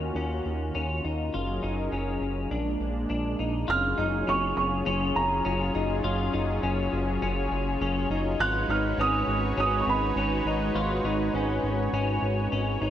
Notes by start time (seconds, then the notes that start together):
Already playing: D#2 D#3 A#3 C#4 F4 F#4
0.15 D#2 C#4
0.46 D#2
0.75 D#2 C#4
1.05 D#2 D#4
1.32 F#1 F#3 C#4 F4 G#4 A#4
1.63 F#1 D#4
1.92 F#1 C#4
2.21 F#1
2.50 A#1 G#3 A#3 D4
2.80 A#1
3.10 A#1 D4
3.39 A#1 D#4
3.68 F#1 F#3 C#4 F4 G#4 C#5 F6
3.98 F#1 D#4
4.27 F#1 C#4 C#6
4.57 F#1 C#6
4.86 F#1 C#4
5.16 F#1 A#5
5.45 F#1 C#4
5.75 F#1 D#4
6.04 F#1 F4
6.33 F#1 D#4
6.63 F#1 C#4
6.93 F#1
7.22 F#1 C#4
7.51 F#1
7.81 F#1 C#4
8.10 F#1 D#4
8.39 G#1 G#3 D#4 F4 F#4 B4 F#6
8.68 G#1 D#4 F6
8.97 G#1 C#4 D#6
9.28 G#1
9.57 G#1 C#4 D#6
9.81 C#6
9.87 G#1 B5
10.16 G#1 C#4
10.45 G#1 D#4
10.75 G#1 F4
11.04 G#1 D#4
11.34 G#1 C#4
11.63 G#1
11.93 G#1 C#4
12.22 G#1
12.52 G#1 C#4
12.81 G#1 D#4